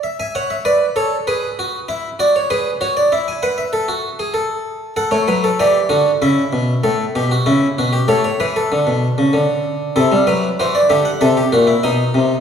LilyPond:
<<
  \new Staff \with { instrumentName = "Harpsichord" } { \time 4/4 \key d \major \tempo 4 = 96 << { e''16 gis''16 fis''16 e''16 d''8 cis''8 b'4 e''8 d''16 cis''16 | b'8 cis''16 d''16 e''16 gis''16 fis''16 e''2~ e''16 | fis''4 d''4 e''2~ | e''4 cis''2. |
\key a \dorian a'8 b'8 c''16 d''16 e''16 fis''16 e''4 dis''4 | } \\ { r16 e''16 cis''8 b'8 a'8 gis'8 fis'8 e'8 fis'8 | gis'8 fis'8 e'8 b'8 a'16 fis'8 gis'16 a'4 | a'16 cis''16 b'16 a'16 g'8 fis'8 e'4 a'8 g'16 fis'16 | e'8 fis'16 g'16 a'16 cis''16 b'16 a'2~ a'16 |
e'4 fis'8 g'8 a'16 g'16 fis'16 e'16 dis'4 | } >> }
  \new Staff \with { instrumentName = "Harpsichord" } { \clef bass \time 4/4 \key d \major r1 | r1 | r16 a16 fis8 e8 d8 cis8 b,8 a,8 b,8 | cis8 b,8 a,8 e8 d16 b,8 cis16 d4 |
\key a \dorian c16 g16 fis8 e8 d8 c8 bes,8 b,8 c8 | }
>>